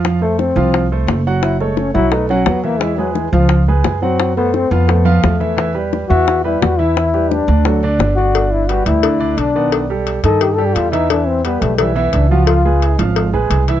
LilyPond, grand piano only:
\new Staff \with { instrumentName = "Grand piano" } { \time 4/4 \key e \minor \tempo 4 = 174 <f f' f''>8 <a a' c''>4 <f f' f''>4 <a a' c''>4 <fis fis' fis''>8~ | <fis fis' fis''>8 <a a' cis''>4 <fis fis' fis''>8 <a a' b'>8 <fis fis' fis''>4 <e e' e''>8 | <e e' e''>8 <gis gis' b'>4 <f f' f''>4 <gis gis' b'>4 <fis fis' fis''>8~ | <fis fis' fis''>8 <a a' c''>4 <f f' f''>8 <a a' c''>8 <f f' f''>4 <e e' e''>8 |
<e e' e''>8 <g g' b'>4 <e e' e''>4 <g g' b'>4 <e e' e''>8~ | <e e' e''>8 <g g' b'>4 <d d' d''>8 <fis fis' a'>8 <d d' d''>4 <d d' d''>8 | \key b \phrygian <d d' d''>4 <g g' b'>4 <d d' d''>8 <d d' d''>4 <ees b d''>8~ | <ees b d''>8 <g g' a'>4 <dis dis' dis''>4 <g g' a'>4 <e e' e''>8 |
<e e' e''>4 <g g' b'>4 <e e' e''>8 <e e' e''>4 <f f' f''>8~ | <f f' f''>8 <gis gis' b'>4 <eis eis' eis''>4 <gis gis' b'>4 <e e' e''>8 | }